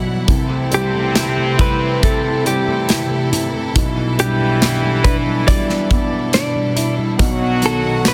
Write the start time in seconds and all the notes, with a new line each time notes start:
Already playing: B1 B2 E3 F#3 E4 F#5
0.07 G3
0.28 C2 C3 C4 A4, kick, closed hi-hat
0.50 A3
0.71 G3 E4 G4, closed hi-hat
0.95 A3
1.15 E4, snare, closed hi-hat, tambourine
1.38 A3
1.59 G3 E4 B4, kick, closed hi-hat
1.82 A3
2.02 C3 E4 A4, kick, closed hi-hat
2.25 A3
2.46 G3 E4 G4, closed hi-hat
2.68 A3
2.89 E4, snare, closed hi-hat, tambourine
3.11 A3
3.32 C3 E4, closed hi-hat
3.54 A3
3.75 B1 B2 E3 E4, kick, closed hi-hat
3.97 G3
4.19 G3 D4 G4, closed hi-hat
4.40 G3
4.62 B3 D4, snare, closed hi-hat, tambourine
4.83 G3
5.04 D4 B4, kick, closed hi-hat
5.26 G3
5.48 G3 D5, kick, closed hi-hat
5.70 G3, snare
5.91 B3 D4, kick, closed hi-hat
6.13 G3
6.33 D4 D5, snare, closed hi-hat, tambourine
6.56 G3
6.76 D4 E4, closed hi-hat
6.99 G3
7.18 B1 B2 F#3 B3 D#4 F#4 F#5, kick, closed hi-hat
7.41 B3
7.62 D#3 D#4 A4, closed hi-hat
7.84 B3
8.05 D#4 B4, snare, closed hi-hat, tambourine